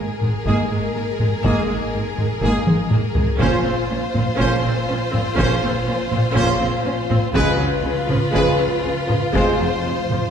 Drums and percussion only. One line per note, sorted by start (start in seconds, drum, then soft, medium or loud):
0.21 taiko mid medium
0.46 taiko medium
1.19 taiko mid medium
1.44 taiko loud
2.18 taiko mid medium
2.42 taiko medium
2.67 taiko high medium
2.91 taiko mid loud
3.15 taiko low loud
3.39 taiko loud
4.15 taiko mid medium
4.39 taiko medium
5.14 taiko mid medium
5.38 taiko loud
6.12 taiko mid medium
6.37 taiko medium
7.11 taiko mid medium
7.35 taiko loud
8.09 taiko mid medium
8.35 taiko medium
9.09 taiko mid medium
9.34 taiko loud
9.61 taiko rim soft
10.11 taiko mid medium